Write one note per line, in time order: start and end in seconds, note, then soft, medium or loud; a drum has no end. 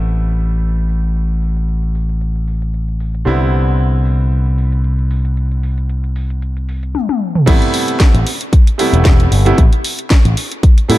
0.00 3.24 A1 medium
0.00 3.23 C3 medium
0.00 3.23 G3 medium
0.00 3.23 A3 medium
0.00 3.24 B3 medium
0.00 3.24 E4 medium
0.10 closed hi-hat soft
0.25 closed hi-hat soft
0.37 open hi-hat medium
0.51 closed hi-hat soft
0.63 closed hi-hat soft
0.78 closed hi-hat soft
0.89 open hi-hat medium
1.04 closed hi-hat soft
1.16 closed hi-hat soft
1.30 closed hi-hat soft
1.42 open hi-hat medium
1.57 closed hi-hat soft
1.69 closed hi-hat soft
1.83 closed hi-hat soft
1.95 open hi-hat loud
2.09 closed hi-hat soft
2.21 closed hi-hat soft
2.36 closed hi-hat soft
2.48 open hi-hat loud
2.62 closed hi-hat soft
2.74 closed hi-hat soft
2.88 closed hi-hat soft
3.00 open hi-hat medium
3.15 closed hi-hat soft
3.25 6.95 C2 medium
3.25 6.94 D3 medium
3.25 6.94 G3 medium
3.25 6.95 B3 medium
3.25 6.95 C4 medium
3.25 6.95 E4 medium
3.53 open hi-hat loud
3.67 closed hi-hat soft
3.79 closed hi-hat soft
3.93 closed hi-hat soft
4.05 open hi-hat loud
4.20 closed hi-hat soft
4.32 closed hi-hat soft
4.46 closed hi-hat soft
4.58 open hi-hat loud
4.72 closed hi-hat soft
4.84 closed hi-hat soft
4.99 closed hi-hat soft
5.11 open hi-hat loud
5.25 closed hi-hat soft
5.37 closed hi-hat soft
5.51 closed hi-hat soft
5.63 open hi-hat loud
5.78 closed hi-hat soft
5.90 closed hi-hat soft
6.04 closed hi-hat soft
6.16 open hi-hat medium
6.30 closed hi-hat soft
6.42 closed hi-hat soft
6.57 closed hi-hat soft
6.69 open hi-hat medium
6.83 closed hi-hat soft
6.95 high tom medium
7.09 high tom medium
7.35 mid tom medium
7.46 7.58 A1 loud
7.46 8.26 C3 medium
7.46 8.26 G3 medium
7.46 8.26 A3 medium
7.46 8.26 B3 medium
7.46 8.27 E4 loud
7.46 kick loud
7.46 closed hi-hat medium
7.46 crash loud
7.62 closed hi-hat soft
7.74 open hi-hat loud
7.88 closed hi-hat medium
8.00 kick loud
8.00 snare loud
8.00 closed hi-hat medium
8.14 8.23 A1 medium
8.14 closed hi-hat soft
8.27 open hi-hat loud
8.41 closed hi-hat medium
8.53 kick loud
8.53 closed hi-hat medium
8.67 closed hi-hat soft
8.78 9.42 C3 medium
8.78 9.42 G3 medium
8.78 9.43 A3 medium
8.78 9.43 B3 medium
8.78 9.43 E4 medium
8.78 open hi-hat loud
8.93 9.26 E1 medium
8.93 closed hi-hat medium
9.05 kick loud
9.05 snare loud
9.05 closed hi-hat medium
9.20 closed hi-hat soft
9.32 9.51 G1 medium
9.32 open hi-hat loud
9.45 9.60 C3 medium
9.45 9.60 G3 medium
9.45 9.60 A3 medium
9.45 9.60 B3 medium
9.45 9.60 E4 medium
9.45 closed hi-hat medium
9.58 9.68 A1 loud
9.58 kick loud
9.58 closed hi-hat medium
9.73 closed hi-hat soft
9.85 open hi-hat loud
9.99 closed hi-hat medium
10.10 kick loud
10.10 snare loud
10.10 closed hi-hat medium
10.25 10.33 A1 medium
10.25 closed hi-hat soft
10.37 open hi-hat loud
10.52 closed hi-hat medium
10.63 kick loud
10.63 closed hi-hat medium
10.78 closed hi-hat soft
10.88 10.98 A2 loud
10.88 10.98 C3 medium
10.88 10.98 G3 medium
10.88 10.98 A3 medium
10.88 10.98 B3 medium
10.88 10.98 E4 medium
10.88 open hi-hat loud